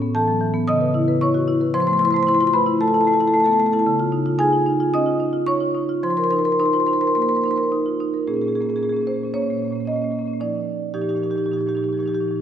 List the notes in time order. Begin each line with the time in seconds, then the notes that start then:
Already playing: A2
0.02 B3
0.15 E3 A4 A5
0.28 F#3
0.41 E3
0.54 B3
0.68 C#3 D#5 D#6
0.81 B4
0.94 E4
1.08 B4
1.21 E4 C#5 C#6
1.34 F#4
1.48 E4
1.61 B4
1.74 F3 C5 C6
1.80 C5 C6
1.87 A3 C5 C6
1.93 C6
1.97 E4 C5 C6
2.05 C5 C6
2.11 A3 C5 C6
2.16 C5 C6
2.23 C6
2.27 E4 C5 C6
2.35 C5 C6
2.40 F4 C5 C6
2.47 C6
2.53 A3 B4 B5
2.66 E4
2.81 A3 A4 A5
2.88 A4 A5
2.94 E4 A4 A5
3.01 A4 A5
3.07 A3 A5
3.12 A4 A5
3.19 E4 A4 A5
3.28 A4 A5
3.34 A3 A4 A5
3.40 A5
3.44 B3 A4 A5
3.51 A4 A5
3.59 A3 A4 A5
3.66 A4 A5
3.72 E4 A4 A5
3.79 A5
3.86 C#3
4.00 F4
4.12 D#4
4.26 F4
4.39 D#4 G#4 G#5
4.53 F4
4.66 D#4
4.80 F4
4.94 C#4 D#5 D#6
5.06 F4
5.20 D#4
5.33 F4
5.46 D#4 C#5 C#6
5.60 F4
5.75 D#4
5.89 F4
6.03 F3 C5 C6
6.10 C5 C6
6.17 A#4 C5 C6
6.24 C5 C6
6.30 D#4 C5 C6
6.37 C5 C6
6.44 A#4 C5 C6
6.52 C5 C6
6.59 D#4 C5 C6
6.66 C5 C6
6.73 F4 C5 C6
6.80 C5 C6
6.87 D#4 C5 C6
6.93 C5 C6
7.01 A#4 C5 C6
7.07 C5 C6
7.15 A#3 C5 C6
7.22 C5 C6
7.28 A#4 C5 C6
7.35 C5 C6
7.42 D#4 C5 C6
7.48 C5 C6
7.56 A#4 C5 C6
7.63 C5
7.72 D#4
7.86 F4
8.00 D#4
8.14 A#4
8.28 A#2 A#3 C#4 G#4
8.34 A#2 A#3 C#4 G#4
8.41 A#3 C#4 G#4
8.47 A#2 G#4
8.52 A#3 C#4 G#4
8.56 A#2
8.60 A#3 C#4 G#4
8.65 A#2 A#3 C#4
8.70 G#4
8.74 A#2 A#3 C#4 G#4
8.83 A#2 A#3 C#4 G#4
8.89 A#2 A#3 G#4
8.93 C#4 G#4
9.00 A#2 A#3 C#4
9.07 A#3 C#4 C5
9.13 A#2 A#3
9.17 C#4
9.23 A#2 A#3 C#4
9.34 A#2 A#3 C#4 C#5
9.42 A#2 A#3 C#4
9.50 A#2 A#3 C#4
9.57 A#3 C#4
9.62 A#2 A#3
9.68 A#2 C#4
9.73 A#3 C#4
9.80 A#2 A#3
9.85 A#3 C#4 D#5
9.92 A#2 C#4
9.96 A#3
10.02 A#2 A#3 C#4
10.11 A#2 A#3 C#4
10.19 A#2 A#3 C#4
10.26 A#2 A#3 C#4
10.33 A#3
10.41 A#2 F3 D#4 D5
10.94 A#2 F3 D#4 G4
11.01 A#2 F3 D#4 G4
11.09 F3 D#4 G4
11.15 A#2 D#4 G4
11.20 F3 D#4 G4
11.26 A#2 F3
11.30 D#4 G4
11.35 A#2 D#4 G4
11.40 F3 D#4
11.46 A#2 F3 G4
11.51 D#4 G4
11.56 A#2 F3 D#4
11.61 G4
11.66 A#2 F3 D#4 G4
11.75 A#2 F3 D#4 G4
11.83 F3 D#4 G4
11.89 A#2 D#4 G4
11.94 F3 D#4
11.99 A#2 F3 G4
12.06 A#2 D#4 G4
12.12 F3 D#4 G4
12.21 A#2 F3 D#4
12.28 A#2 F3 D#4
12.36 D#4